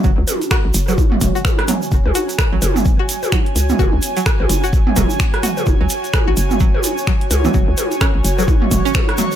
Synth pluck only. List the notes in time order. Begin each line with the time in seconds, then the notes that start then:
0.04 F#3
0.51 F#4
0.88 F#3
1.35 F#4
1.68 F#3
2.15 F#4
2.53 F#3
2.99 F#4
3.32 F#3
3.79 F#4
4.17 F#3
4.64 F#4
4.96 F#3
5.43 F#4
5.81 F#3
6.28 F#4
6.60 F#3
7.07 F#3
7.45 E3
7.54 F#3
8.01 C#4
8.39 F#3
8.85 C#4
9.18 F#3